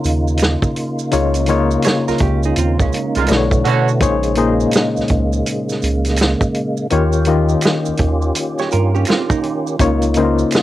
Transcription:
Already playing: reed electric piano C#3 A#3 D#4 F4 C5 C#5 F5, tonewheel organ C#3 A#3 D#4 F4
0.04 analog synth bass D#2, closed hi-hat, maracas
0.28 maracas
0.37 finger snap, closed hi-hat, maracas
0.42 snare
0.62 kick, maracas
0.76 closed hi-hat
0.99 maracas
1.11 analog synth bass C#2, reed electric piano C#3 A#3 D#4 F4 C#5, closed hi-hat, maracas
1.34 closed hi-hat, maracas
1.46 reed electric piano C#3 A#3 D#4 F4, closed hi-hat, maracas
1.50 reed electric piano C#5
1.71 maracas
1.82 hollow-body jazz guitar G#4 C#5, finger snap, closed hi-hat, maracas
1.87 snare
2.08 analog synth bass C#2, hollow-body jazz guitar F4 A#4, snare, maracas
2.18 analog synth bass C#2, kick, closed hi-hat
2.23 hollow-body jazz guitar C#4 G4
2.43 hollow-body jazz guitar D#4 G#4, maracas
2.56 analog synth bass D#2, hollow-body jazz guitar C4 F4, closed hi-hat, maracas
2.79 analog synth bass C#2, hollow-body jazz guitar G#3 C#4, kick, maracas
2.93 closed hi-hat, maracas
3.15 analog synth bass C2, horn section A#2 G#3 F4, closed hi-hat, maracas
3.26 analog synth bass B1, reed electric piano B2 A3 D4 C5, tonewheel organ D3 A3 B3, finger snap, closed hi-hat, maracas
3.30 reed electric piano E4, snare
3.37 reed electric piano C#5
3.51 analog synth bass B1, kick, maracas
3.65 analog synth bass B2, horn section D3 C#4 F#4, closed hi-hat
3.88 maracas
4.00 analog synth bass A#1, reed electric piano A#2 A#3 D#4 G#4 C5 C#5, tonewheel organ C#3 G#3 A#3, kick, closed hi-hat, maracas
4.23 closed hi-hat, maracas
4.35 reed electric piano A#2 A#3 D#4 G#4 C5 D#5, closed hi-hat, maracas
4.60 maracas
4.71 finger snap, closed hi-hat, maracas
4.76 snare
4.97 analog synth bass C#2, snare, maracas
5.08 analog synth bass C#2, kick, closed hi-hat
5.33 maracas
5.46 closed hi-hat, maracas
5.69 snare, maracas
5.82 analog synth bass C#2, closed hi-hat, maracas
6.04 snare, closed hi-hat, maracas
6.16 finger snap, closed hi-hat, maracas
6.21 snare
6.41 kick, maracas
6.54 closed hi-hat
6.77 maracas
6.90 analog synth bass D#2, tonewheel organ D#3 C#4 F4 G4, reed electric piano D#3 A#3 F4 G4 C#5, closed hi-hat, maracas
7.12 maracas
7.25 reed electric piano D#3 A#3 F4 G4 D#5, closed hi-hat, maracas
7.49 maracas
7.61 finger snap, closed hi-hat, maracas
7.66 snare
7.85 analog synth bass D#2, maracas
7.97 analog synth bass D#2, kick, closed hi-hat
8.22 maracas
8.35 closed hi-hat, maracas
8.58 hollow-body jazz guitar G4 C#5, snare, maracas
8.71 analog synth bass G2, hollow-body jazz guitar F4 A#4, closed hi-hat, maracas
8.95 hollow-body jazz guitar C#4 G4, maracas
9.05 hollow-body jazz guitar C4 F4, finger snap, closed hi-hat, maracas
9.10 snare
9.29 hollow-body jazz guitar A#3 D#4, kick, maracas
9.43 closed hi-hat
9.67 maracas
9.79 analog synth bass C#2, tonewheel organ C#3 A#3 D#4, reed electric piano C#3 A#3 D#4 F4 C#5, kick, closed hi-hat, maracas
10.02 closed hi-hat, maracas
10.14 reed electric piano C#3 A#3 D#4 E4, closed hi-hat, maracas
10.18 reed electric piano C5
10.25 reed electric piano F4
10.39 maracas
10.51 finger snap, closed hi-hat, maracas
10.55 snare

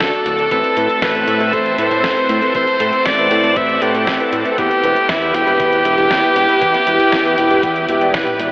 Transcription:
Already playing: string machine F#4 A4 D5, tenor saxophone A4
0.00 analog synth bass D2, kick, snare, closed hi-hat
0.13 closed hi-hat
0.26 analog synth bass D1, closed hi-hat
0.39 closed hi-hat
0.51 analog synth bass A1, string machine A3 C4 E5, electric grand piano C4 E4 A4 B4, tenor saxophone A4, kick, closed hi-hat
0.64 closed hi-hat
0.77 analog synth bass A2, electric grand piano C4 E4 A4 B4, closed hi-hat
0.90 closed hi-hat
1.02 analog synth bass A1, tenor saxophone B4, kick, snare, closed hi-hat
1.15 electric grand piano C4 E4 A4 B4, closed hi-hat
1.28 analog synth bass A2, closed hi-hat
1.40 analog synth bass A2, electric grand piano C4 E4 A4 B4, closed hi-hat
1.53 analog synth bass A1, electric grand piano C4 E4 A4 B4, tenor saxophone C5, kick, closed hi-hat
1.66 closed hi-hat
1.78 analog synth bass A2, electric grand piano C4 E4 A4 B4, tenor saxophone C5, closed hi-hat
1.91 analog synth bass A2, closed hi-hat
2.04 analog synth bass A1, kick, snare, closed hi-hat
2.17 electric grand piano C4 E4 A4 B4, closed hi-hat
2.29 analog synth bass A2, closed hi-hat
2.42 electric grand piano C4 E4 A4 B4, closed hi-hat
2.55 analog synth bass A1, electric grand piano C4 E4 A4 B4, tenor saxophone C5, string machine F#5, kick, closed hi-hat
2.67 closed hi-hat
2.80 analog synth bass A2, electric grand piano C4 E4 A4 B4, closed hi-hat
2.93 closed hi-hat
3.06 analog synth bass A1, tenor saxophone D5, kick, snare, closed hi-hat
3.18 electric grand piano C4 E4 A4 B4, closed hi-hat
3.31 analog synth bass A2, closed hi-hat
3.44 analog synth bass A2, electric grand piano C4 E4 A4 B4, closed hi-hat
3.56 analog synth bass A1, electric grand piano C4 E4 A4 B4, tenor saxophone E5, kick, closed hi-hat
3.69 closed hi-hat
3.82 analog synth bass A2, electric grand piano C4 E4 A4 B4, tenor saxophone G4, closed hi-hat
3.95 analog synth bass A2, closed hi-hat
4.07 analog synth bass A1, kick, snare, closed hi-hat
4.20 electric grand piano C4 E4 A4 B4, closed hi-hat
4.33 analog synth bass A2, closed hi-hat
4.45 electric grand piano C4 E4 A4 B4, closed hi-hat
4.51 tenor saxophone A4
4.58 analog synth bass E2, electric grand piano B3 E4 G4 B4, string machine E4 G4 B4, tenor saxophone G4, kick, closed hi-hat
4.71 closed hi-hat
4.84 analog synth bass E1, electric grand piano B3 E4 G4 B4, closed hi-hat
4.96 closed hi-hat
5.09 analog synth bass E2, tenor saxophone E4, kick, snare, closed hi-hat
5.22 electric grand piano B3 E4 G4 B4, closed hi-hat
5.34 analog synth bass E1, tenor saxophone G4, closed hi-hat
5.47 analog synth bass E1, electric grand piano B3 E4 G4 B4, closed hi-hat
5.60 analog synth bass E2, electric grand piano B3 E4 G4 B4, kick, closed hi-hat
5.73 closed hi-hat
5.85 analog synth bass E1, electric grand piano B3 E4 G4 B4, closed hi-hat
5.98 analog synth bass E1, closed hi-hat
6.11 analog synth bass E2, kick, snare, closed hi-hat
6.23 electric grand piano B3 E4 G4 B4, closed hi-hat
6.36 analog synth bass E1, closed hi-hat
6.49 electric grand piano B3 E4 G4 B4, closed hi-hat
6.62 analog synth bass E2, electric grand piano B3 E4 G4 B4, kick, closed hi-hat
6.74 snare, closed hi-hat
6.87 analog synth bass E1, electric grand piano B3 E4 G4 B4, closed hi-hat
7.00 closed hi-hat
7.12 analog synth bass E2, kick, snare, closed hi-hat
7.25 electric grand piano B3 E4 G4 B4, closed hi-hat
7.38 analog synth bass E1, closed hi-hat
7.51 analog synth bass E1, electric grand piano B3 E4 G4 B4, closed hi-hat
7.63 analog synth bass E2, electric grand piano B3 E4 G4 B4, kick, closed hi-hat
7.76 closed hi-hat
7.89 analog synth bass E1, electric grand piano B3 E4 G4 E5, closed hi-hat
8.01 analog synth bass E1, electric grand piano B3 E4 G4 D5, closed hi-hat
8.14 analog synth bass E2, electric grand piano B3 E4 G4 D5, tenor saxophone B4, kick, snare, closed hi-hat, high tom
8.27 closed hi-hat, high tom
8.39 analog synth bass E1, electric grand piano B3 E4 G4 D5, closed hi-hat

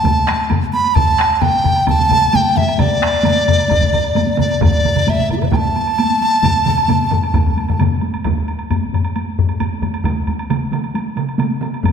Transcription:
Already playing: dizi A5
0.03 taiko, taiko low-mid, taiko mid, taiko high, high woodblock
0.16 taiko high
0.27 taiko rim, taiko high, high woodblock
0.38 taiko high, high woodblock
0.50 taiko low-mid, taiko mid, taiko high, high woodblock
0.61 taiko high
0.72 dizi B5, taiko high, high woodblock
0.84 taiko high, high woodblock
0.94 dizi A5, taiko, taiko low-mid, taiko mid, taiko high, high woodblock
1.07 taiko high
1.18 taiko rim, taiko high, high woodblock
1.20 taiko rim
1.29 taiko high, high woodblock
1.35 dizi A5
1.41 dizi G5, taiko low-mid, taiko mid, taiko high, high woodblock
1.53 taiko high
1.64 taiko low-mid, taiko mid, taiko high, high woodblock
1.75 taiko high, high woodblock
1.87 dizi A5, taiko, taiko low-mid, taiko mid, taiko high, high woodblock
1.98 taiko low-mid, taiko mid, taiko high
2.09 taiko low-mid, taiko mid, taiko high, high woodblock
2.21 taiko high, high woodblock
2.33 dizi G5, taiko low-mid, taiko mid, taiko high, high woodblock
2.44 taiko high
2.56 dizi E5, taiko low-mid, taiko mid, taiko high, high woodblock
2.67 taiko high, high woodblock
2.78 dizi D5, taiko, taiko low-mid, taiko mid, taiko high, high woodblock
2.90 taiko high
3.00 taiko rim, taiko high, high woodblock
3.12 taiko high, high woodblock
3.23 taiko low-mid, taiko mid, taiko high, high woodblock
3.34 taiko high
3.46 taiko low-mid, taiko mid, taiko high, high woodblock
3.58 taiko high, high woodblock
3.68 taiko, taiko low-mid, taiko mid, taiko high, high woodblock
3.80 taiko low-mid, taiko mid, taiko high
3.92 taiko low-mid, taiko mid, high woodblock
4.04 taiko high, high woodblock
4.15 taiko low-mid, taiko mid, taiko high, high woodblock
4.26 taiko high
4.38 dizi D5, taiko low-mid, taiko mid, taiko high, high woodblock
4.51 taiko high, high woodblock
4.61 dizi D5, taiko, taiko low-mid, taiko mid, taiko high, high woodblock
4.74 taiko high
4.84 taiko low-mid, taiko mid, taiko high, high woodblock
4.96 taiko low-mid, taiko mid, high woodblock
5.07 dizi E5, taiko low-mid, taiko mid, taiko high, high woodblock
5.18 taiko low-mid, taiko mid, taiko high
5.29 dizi E4, taiko low-mid, taiko mid, taiko high, high woodblock
5.37 dizi G4 A4
5.42 dizi B4 D5, taiko low-mid, taiko mid, taiko high, high woodblock
5.49 dizi E5 G5, taiko, taiko mid
5.53 dizi A5, taiko low-mid, taiko high, high woodblock
5.65 taiko high
5.76 taiko high, high woodblock
5.87 taiko high, high woodblock
5.99 taiko high, high woodblock
6.10 taiko high
6.21 taiko high, high woodblock
6.32 taiko high, high woodblock
6.43 taiko, taiko low-mid, taiko mid, taiko high, high woodblock
6.55 taiko high
6.66 taiko low-mid, taiko mid, taiko high, high woodblock
6.77 taiko high, high woodblock
6.88 taiko low-mid, taiko mid, taiko high, high woodblock
7.00 taiko high
7.11 taiko low-mid, taiko mid, taiko high, high woodblock
7.23 taiko high, high woodblock
7.34 taiko, taiko low-mid, taiko mid, taiko high, high woodblock
7.45 taiko low-mid, taiko mid, taiko high
7.57 taiko high, high woodblock
7.68 taiko low-mid, taiko mid, taiko high, high woodblock
7.79 taiko low-mid, taiko mid, taiko high, high woodblock
7.90 taiko high
8.01 taiko high, high woodblock
8.13 taiko high, high woodblock
8.24 taiko, taiko low-mid, taiko high, high woodblock
8.36 taiko high
8.47 taiko high, high woodblock
8.58 taiko high, high woodblock
8.70 taiko low-mid, taiko high, high woodblock
8.82 taiko high
8.93 taiko low-mid, taiko high, high woodblock
9.05 taiko high, high woodblock
9.16 taiko high, high woodblock
9.39 taiko low-mid
9.49 taiko high, high woodblock
9.60 taiko low-mid, taiko high, high woodblock
9.72 taiko high
9.82 taiko low-mid, taiko high, high woodblock
9.94 taiko high, high woodblock
10.04 taiko, taiko mid, taiko high, high woodblock
10.16 taiko high
10.27 taiko, taiko high, high woodblock
10.39 taiko high, high woodblock
10.50 taiko mid, taiko high, high woodblock
10.61 taiko high
10.72 taiko mid, taiko high, high woodblock
10.84 high woodblock
10.94 taiko high, high woodblock
11.16 taiko mid, taiko high, high woodblock
11.28 taiko high, high woodblock
11.38 taiko mid, taiko high, high woodblock
11.51 taiko high
11.61 taiko mid, high woodblock
11.72 taiko high, high woodblock
11.83 taiko, taiko low-mid, taiko high, high woodblock

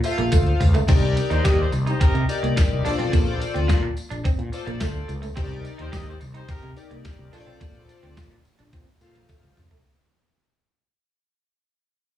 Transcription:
0.04 analog polysynth F4 A4 C5 E5, muted clean electric guitar stroke, closed hi-hat, tambourine
0.11 analog polysynth F5
0.18 fretless electric bass A#1, clean electric guitar A#3, closed hi-hat
0.32 fretless electric bass D2, clean electric guitar A3, kick, closed hi-hat, high tom, tambourine
0.47 closed hi-hat
0.60 fretless electric bass C#2, muted clean electric guitar stroke, mid tom, open hi-hat, tambourine
0.74 clean electric guitar A3, closed hi-hat, floor tom, tambourine
0.88 fretless electric bass C2, clean electric guitar C4, analog polysynth D#4 G4 A#4 D5, kick, crash, tambourine
1.16 muted clean electric guitar stroke, closed hi-hat, tambourine
1.30 fretless electric bass D#2, clean electric guitar D#4, horn section D#4 G4 C5, closed hi-hat, tambourine
1.44 fretless electric bass D#2, clean electric guitar G4, horn section A#4 C5 D#5, kick, snare, closed hi-hat, tambourine
1.59 horn section D#4 G4 C5
1.72 fretless electric bass C2, muted clean electric guitar stroke, closed hi-hat, tambourine
1.87 clean electric guitar D#4, horn section D#4 G4 C5, closed hi-hat, tambourine
2.00 clean electric guitar C4, horn section D#4 G4 A#4, kick, closed hi-hat, tambourine
2.14 fretless electric bass C3, muted clean electric guitar stroke, closed hi-hat
2.29 analog polysynth D#4 G4 A#4 D5, closed hi-hat, tambourine
2.43 fretless electric bass C2, clean electric guitar A#3, closed hi-hat
2.56 muted clean electric guitar stroke, kick, snare, closed hi-hat, tambourine
2.71 fretless electric bass C2
2.85 fretless electric bass A#1, clean electric guitar D4, analog polysynth F4 A4 C5 D5, closed hi-hat, tambourine
2.98 fretless electric bass B1, clean electric guitar C4, closed hi-hat
3.12 fretless electric bass A#1, clean electric guitar A#3, kick, closed hi-hat, tambourine
3.27 tambourine
3.40 muted clean electric guitar stroke, closed hi-hat, tambourine
3.54 fretless electric bass D2, clean electric guitar C4, closed hi-hat
3.68 fretless electric bass A#2, clean electric guitar F4, kick, snare, closed hi-hat, tambourine
3.83 muted clean electric guitar stroke
3.97 closed hi-hat, tambourine
4.10 fretless electric bass A#1, clean electric guitar D4, closed hi-hat, tambourine
4.24 clean electric guitar C4, kick, closed hi-hat, tambourine
4.39 fretless electric bass A#2, closed hi-hat
4.52 analog polysynth F4 A4 C5 D5, muted clean electric guitar stroke, closed hi-hat, tambourine
4.66 fretless electric bass A#1, clean electric guitar A#3, closed hi-hat
4.80 fretless electric bass D2, clean electric guitar A3, kick, snare, closed hi-hat, tambourine
5.08 fretless electric bass C#2, muted clean electric guitar stroke, closed hi-hat, tambourine
5.22 clean electric guitar A3, closed hi-hat, tambourine
5.36 fretless electric bass C2, clean electric guitar C4, analog polysynth D#4 G4 A#4 C5, kick, closed hi-hat, tambourine
5.44 analog polysynth D5
5.51 tambourine
5.64 muted clean electric guitar stroke, closed hi-hat, tambourine
5.78 fretless electric bass D#2, clean electric guitar D#4, horn section D#4 G4 C5, closed hi-hat
5.92 fretless electric bass D#2, clean electric guitar G4, horn section A#4 C5 D#5, kick, snare, closed hi-hat, tambourine
6.07 horn section D#4 G4 C5
6.20 fretless electric bass C2, muted clean electric guitar stroke, closed hi-hat, tambourine
6.34 clean electric guitar D#4, horn section D#4 G4 C5, closed hi-hat
6.49 clean electric guitar C4, horn section D#4 G4 A#4, muted fretless electric bass stroke, kick, closed hi-hat, tambourine
6.62 fretless electric bass C3, muted clean electric guitar stroke, closed hi-hat
6.76 analog polysynth D#4 G4 A#4 D5, closed hi-hat, tambourine
6.91 fretless electric bass C2, clean electric guitar A#3, closed hi-hat
7.05 muted clean electric guitar stroke, kick, snare, closed hi-hat, tambourine
7.19 fretless electric bass C2
7.33 fretless electric bass A#1, clean electric guitar D4, analog polysynth F4 A4 C5 C#5, closed hi-hat, tambourine
7.40 analog polysynth D5
7.47 fretless electric bass B1, clean electric guitar C4, closed hi-hat
7.60 fretless electric bass A#1, clean electric guitar A#3, kick, closed hi-hat, tambourine
7.75 closed hi-hat
7.89 muted clean electric guitar stroke, closed hi-hat, tambourine
8.03 fretless electric bass D2, clean electric guitar C4, closed hi-hat
8.17 fretless electric bass A#2, clean electric guitar F4, kick, snare, closed hi-hat, tambourine
8.31 muted clean electric guitar stroke, closed hi-hat
8.45 closed hi-hat, tambourine
8.59 fretless electric bass A#1, clean electric guitar D4, closed hi-hat, tambourine
8.73 fretless electric bass A#2, clean electric guitar C4, kick, closed hi-hat, tambourine
8.87 closed hi-hat
9.01 fretless electric bass A#2, analog polysynth F4 A4 C5 F5, muted clean electric guitar stroke, closed hi-hat, tambourine
9.15 fretless electric bass A#1, clean electric guitar A#3, closed hi-hat
9.29 clean electric guitar A3, kick, closed hi-hat, high tom, tambourine
9.43 fretless electric bass C#2, closed hi-hat, mid tom
9.57 fretless electric bass C2, muted clean electric guitar stroke, mid tom, open hi-hat, tambourine
9.71 fretless electric bass B1, clean electric guitar A3, closed hi-hat, floor tom

